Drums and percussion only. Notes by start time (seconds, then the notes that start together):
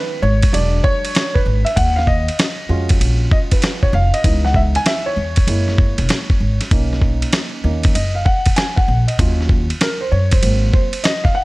0.42 kick, ride
0.54 ride
0.84 kick
1.05 ride
1.15 snare, hi-hat pedal, ride
1.36 kick
1.66 ride
1.77 kick, ride
1.99 snare
2.07 kick
2.28 ride
2.39 snare, hi-hat pedal, ride
2.89 kick, ride
3.01 ride
3.31 kick
3.51 kick, ride
3.62 snare, hi-hat pedal, ride
3.83 kick
4.14 ride
4.24 kick, ride
4.46 snare
4.54 kick
4.75 ride
4.86 snare, hi-hat pedal, ride
5.36 kick, ride
5.48 ride
5.68 snare
5.78 kick
5.98 ride
6.09 snare, hi-hat pedal, ride
6.30 kick
6.61 snare, ride
6.71 kick, ride
6.93 snare
7.02 kick
7.22 ride
7.33 snare, hi-hat pedal, ride
7.83 kick, ride
7.95 ride
8.26 kick
8.46 kick, ride
8.56 snare, hi-hat pedal, ride
8.77 kick
9.08 ride
9.19 kick, ride
9.41 snare
9.49 kick
9.70 ride
9.81 snare, hi-hat pedal, ride
10.31 kick, ride
10.43 ride
10.74 kick
10.93 ride
11.04 snare, hi-hat pedal, ride
11.25 kick